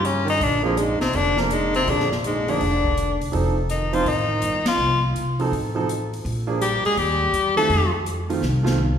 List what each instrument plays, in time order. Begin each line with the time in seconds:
Already playing: upright bass G2
0.04 baritone saxophone C#3, tenor saxophone C#4, closed hi-hat
0.25 baritone saxophone D#3, open hi-hat
0.29 tenor saxophone D#4
0.38 upright bass A#1, baritone saxophone D3, kick, open hi-hat
0.43 tenor saxophone D4
0.63 baritone saxophone F2, grand piano F3 A#3 D4 G#4, tenor saxophone F3
0.77 baritone saxophone G#2, tenor saxophone G#3, closed hi-hat
1.00 baritone saxophone C3, tenor saxophone C4, muted upright bass stroke, snare, open hi-hat
1.13 upright bass F1, baritone saxophone D3, tenor saxophone D4, kick, open hi-hat
1.36 baritone saxophone F2, grand piano F3 A#3 D4 A#4, snare
1.41 tenor saxophone F3
1.50 baritone saxophone G#2, tenor saxophone G#3, closed hi-hat
1.74 baritone saxophone C3, tenor saxophone C4, open hi-hat
1.86 upright bass A#1, baritone saxophone D3, grand piano F3 A#3 D4 G#4, tenor saxophone D4, kick, open hi-hat
2.00 snare
2.09 baritone saxophone F2, tenor saxophone F3, snare
2.24 baritone saxophone G#2, tenor saxophone G#3, closed hi-hat
2.48 baritone saxophone D3, grand piano F3 A#3 D4 G#4, tenor saxophone D4, open hi-hat
2.60 upright bass F1, kick, open hi-hat
2.84 kick
2.97 closed hi-hat
3.20 upright bass C2, open hi-hat
3.32 upright bass F1, grand piano F3 C4 D#4 A4, kick, open hi-hat
3.69 baritone saxophone D#3, tenor saxophone D#4, closed hi-hat
3.93 grand piano F3 C4 D#4 C5, baritone saxophone F3, tenor saxophone F4, open hi-hat
4.06 upright bass A1, baritone saxophone D#3, tenor saxophone D#4, kick, open hi-hat
4.41 upright bass G1, closed hi-hat
4.66 baritone saxophone F3, tenor saxophone F4, snare, ride
4.78 upright bass C2
5.14 upright bass C3, closed hi-hat
5.39 grand piano F3 C4 D#4 A4, open hi-hat
5.51 upright bass A1, kick, open hi-hat
5.75 grand piano F3 C4 D#4 A4
5.89 closed hi-hat
6.13 open hi-hat
6.25 upright bass A#1, kick, open hi-hat
6.47 grand piano F3 A#3 D4 G#4
6.61 baritone saxophone G3, tenor saxophone G4, closed hi-hat
6.83 baritone saxophone G#3, tenor saxophone G#4, muted upright bass stroke, open hi-hat
6.97 upright bass D#2, baritone saxophone G3, tenor saxophone G4, kick, open hi-hat
7.32 upright bass E2, closed hi-hat
7.56 grand piano D#3 A3 C4 F4, baritone saxophone A3, tenor saxophone A4, open hi-hat
7.69 upright bass F2, kick, open hi-hat
8.06 closed hi-hat
8.29 grand piano D#3 A3 C4 F4, open hi-hat
8.42 upright bass C2, snare
8.63 grand piano D#3 A3 C4 F4, snare
8.78 mid tom